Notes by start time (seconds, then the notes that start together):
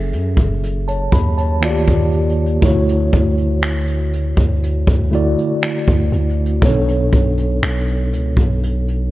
Already playing: F#1 F#3 C#4 G#4 A4 E5
0.13 F#2, closed hi-hat
0.37 F#1, kick
0.63 closed hi-hat
0.88 C#5 A5, closed hi-hat
1.12 D#2 B5, kick, closed hi-hat
1.38 C#5 A5, closed hi-hat
1.61 D2 D#3 A#3 F4 F#4, finger snap, closed hi-hat
1.65 D5
1.71 G4
1.88 D#2, kick, closed hi-hat
2.13 closed hi-hat
2.29 closed hi-hat
2.46 closed hi-hat
2.60 D2 D3 A3 E4 F#4, kick, closed hi-hat
2.65 C#5
2.89 closed hi-hat
3.12 D2, kick, closed hi-hat
3.38 closed hi-hat
3.63 finger snap, closed hi-hat
3.87 closed hi-hat
4.13 closed hi-hat
4.37 D2, kick
4.63 closed hi-hat
4.87 D2, kick, closed hi-hat
5.11 D3 A3 E4 F#4, closed hi-hat
5.15 D5
5.38 closed hi-hat
5.63 finger snap, closed hi-hat
5.88 D2, kick, closed hi-hat
6.12 D2, closed hi-hat
6.29 closed hi-hat
6.46 closed hi-hat
6.61 B1 B2 B3 C#4 A4, kick, closed hi-hat
6.65 C#5
6.69 D4
6.88 closed hi-hat
7.12 B1, kick, closed hi-hat
7.38 closed hi-hat
7.63 B1, finger snap, closed hi-hat
7.87 closed hi-hat
8.12 C#2, closed hi-hat
8.37 B1, kick
8.63 closed hi-hat
8.88 closed hi-hat